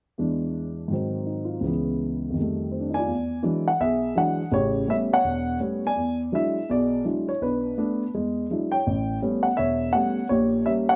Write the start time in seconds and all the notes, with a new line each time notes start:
0.18 E2 E3 G#3 D4
0.88 G#2 D#3 F#3
0.93 C4
1.26 D#4
1.45 F4
1.61 C#2 C#3 E3
1.66 B3
2.30 F2 D#3
2.38 G3 A3
2.72 C4
2.80 D4
2.90 D#4
2.94 D5 G#5
2.99 F4
3.08 E2
3.43 E3 F#3 G#3 D4
3.68 F#5
3.80 B1 G#4 E5
4.15 E3 F#3 G#3 D4 F#5
4.52 A1 C#3 G4 C#5
4.88 G3 A3 B3 C#4 E5
5.13 C#5 F#5
5.24 E1
5.60 G3 A3 B3 C#4
5.87 D5 G#5
5.96 E2
6.32 F#3 G#3 D4 E4 E5
6.69 B1 B2 G#4 D5
7.05 F#3 G#3 D4 E4
7.29 C#5
7.41 B1 D4 B4
7.78 A3 B3 D4
8.15 E2 G#3
8.51 F#3 G#3 D4 E4
8.72 C#5 G5
8.87 A1
9.22 G3 A3 B3 C#4
9.43 F#5
9.57 E1 C#5 E5
9.93 G3 A3 B3 C#4 F#5
10.29 A#1 A#2 G4 C#5
10.66 G3 A#3 C#4 E5
10.89 C#5 F#5